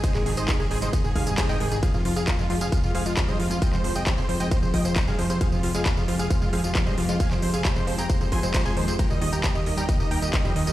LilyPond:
<<
  \new Staff \with { instrumentName = "Supersaw synth" } { \time 4/4 \key f \minor \tempo 4 = 134 <c'' ees''>16 aes'16 aes'16 <c'' ees''>16 aes'16 aes'16 aes'16 <c'' ees''>16 aes'16 aes'16 <aes' f''>16 aes'16 aes'16 <ees'' g''>16 aes'16 aes'16 | <aes' f''>16 f'16 f'16 <aes' f''>16 f'16 f'16 f'16 <aes' f''>16 f'16 f'16 <aes' f''>16 f'16 f'16 <c'' ees''>16 f'16 f'16 | <ees'' g''>16 c''16 c''16 <ees'' g''>16 c''16 c''16 c''16 <ees'' g''>16 c''16 c''16 <ees'' g''>16 c''16 c''16 <aes' f''>16 c''16 c''16 | <aes' f''>16 f'16 f'16 <aes' f''>16 f'16 f'16 f'16 <aes' f''>16 f'16 f'16 <aes' f''>16 f'16 f'16 <c'' ees''>16 f'16 f'16 |
<f'' aes''>16 c''16 c''16 <f'' aes''>16 c''16 c''16 c''16 <g'' bes''>16 c''16 c''16 <aes'' c'''>16 c''16 c''16 <aes'' c'''>16 c''16 c''16 | <g'' bes''>16 ees''16 ees''16 <g'' bes''>16 ees''16 ees''16 ees''16 <g'' bes''>16 ees''16 ees''16 <g'' bes''>16 ees''16 ees''16 <ees'' g''>16 ees''16 ees''16 | }
  \new Staff \with { instrumentName = "Synth arpeggio sound" } { \time 4/4 \key f \minor c''16 aes16 ees16 aes'16 ees16 aes'16 c''16 aes16 ees16 aes'16 ees16 aes'16 c''16 aes16 ees16 aes'16 | f16 aes'16 f16 aes'16 c''16 aes16 f16 aes'16 f16 aes'16 c''16 aes16 f16 aes'16 f16 aes'16 | c''16 aes16 f16 aes'16 f16 aes'16 c''16 aes16 f16 aes'16 f16 aes'16 c''16 aes16 f16 aes'16 | f16 aes'16 c''16 aes16 f16 aes'16 f16 aes'16 c''16 aes16 f16 aes'16 f16 aes'16 c''16 aes16 |
f16 aes'16 f16 aes'16 c''16 aes16 f16 aes'16 f16 aes'16 c''16 aes16 f16 aes'16 f16 aes'16 | bes'16 g16 ees16 g'16 ees16 g'16 bes'16 g16 ees16 g'16 ees16 g'16 bes'16 g16 ees16 g'16 | }
  \new Staff \with { instrumentName = "Analog synth pad" } { \clef bass \time 4/4 \key f \minor <c ees g ees'>8 r16 <c ees g ees'>8 r16 <c ees g ees'>8 r16 <c ees g ees'>16 <c ees g ees'>16 <c ees g ees'>16 <c ees g ees'>8 <c ees g ees'>8 | <c f aes f'>8 r16 <c f aes f'>8 r16 <c f aes f'>8 r16 <c f aes f'>16 <c f aes f'>16 <c f aes f'>16 <c f aes f'>8 <c f aes f'>8 | <c f aes f'>8 r16 <c f aes f'>8 r16 <c f aes f'>8 r16 <c f aes f'>16 <c f aes f'>16 <c f aes f'>16 <c f aes f'>8 <c f aes f'>8 | <c f aes g'>8 r16 <c f aes g'>8 r16 <c f aes g'>8 r16 <c f aes g'>16 <c f aes g'>16 <c f aes g'>16 <c f aes g'>8 <c f aes g'>8 |
<c f aes g'>8 r16 <c f aes g'>8 r16 <c f aes g'>8 r16 <c f aes g'>16 <c f aes g'>16 <c f aes g'>16 <c f aes g'>8 <c f aes g'>8 | <ees g bes g'>8 r16 <ees g bes g'>8 r16 <ees g bes g'>8 r16 <ees g bes g'>16 <ees g bes g'>16 <ees g bes g'>16 <ees g bes g'>8 <ees g bes g'>8 | }
  \new Staff \with { instrumentName = "Analog synth bass" } { \clef bass \time 4/4 \key f \minor r16 aes,,16 aes,,16 aes,,16 r16 aes,,16 aes,,16 aes,,16 r16 aes,16 aes,,16 aes,16 r16 aes,16 aes,16 aes,,16 | r16 f,16 f,16 f,16 r16 f,16 f,16 f,16 r16 f,16 f,16 f,16 r16 g,16 f,16 f,16 | r16 f,16 f,16 f,16 r16 f,16 f,16 f,16 r16 f,16 f,16 f,16 r16 g,16 f,16 f,16 | r16 f,16 f,16 f,16 r16 f,16 f,16 f,16 r16 f,16 f,16 f,16 r16 g,16 f,16 f,16 |
r16 f,16 f,16 f,16 r16 f,16 f,16 f,16 r16 f,16 f,16 f,16 r16 f,16 ees,16 f,16 | r16 ees,16 ees,16 ees,16 r16 ees,16 ees,16 ees,16 r16 ees,16 ees,16 ees,16 r16 f,16 ees,16 ees,16 | }
  \new DrumStaff \with { instrumentName = "Drums" } \drummode { \time 4/4 <hh bd cymr tamb>16 <hc tamb>16 hho16 <hh tamb>16 <hc hh bd cymr tamb>16 tamb16 hho16 <hh tamb>16 <hh bd cymr tamb>16 tamb16 <hho bd>16 <hh tamb>16 <hc hh bd cymr tamb>16 tamb16 hho16 <hh tamb>16 | <hh bd cymr tamb>16 tamb16 hho16 <hh tamb>16 <hc hh bd cymr tamb>16 tamb16 hho16 <hh tamb>16 <hh bd cymr tamb>16 tamb16 hho16 <hh tamb>16 <hc hh bd cymr tamb>16 tamb16 hho16 <hh tamb>16 | <hh bd cymr tamb>16 <hc tamb>16 hho16 <hh tamb>16 <hc hh bd cymr tamb>16 tamb16 hho16 <hh tamb>16 <hh bd cymr tamb>16 tamb16 <hho bd>16 <hh tamb>16 <hc hh bd cymr tamb>16 tamb16 hho16 <hh tamb>16 | <hh bd cymr tamb>16 tamb16 hho16 <hh tamb>16 <hc hh bd cymr tamb>16 tamb16 hho16 <hh tamb>16 <hh bd cymr tamb>16 tamb16 hho16 <hh tamb>16 <hc hh bd cymr tamb>16 tamb16 hho16 <hh tamb>16 |
<hh bd cymr tamb>16 <hc tamb>16 hho16 <hh tamb>16 <hc hh bd cymr tamb>16 tamb16 hho16 <hh tamb>16 <hh bd cymr tamb>16 tamb16 <hho bd>16 <hh tamb>16 <hc hh bd cymr tamb>16 tamb16 hho16 <hh tamb>16 | <hh bd cymr tamb>16 tamb16 hho16 <hh tamb>16 <hc hh bd cymr tamb>16 tamb16 hho16 <hh tamb>16 <hh bd cymr tamb>16 tamb16 hho16 <hh tamb>16 <hc hh bd cymr tamb>16 tamb16 hho16 <hh tamb>16 | }
>>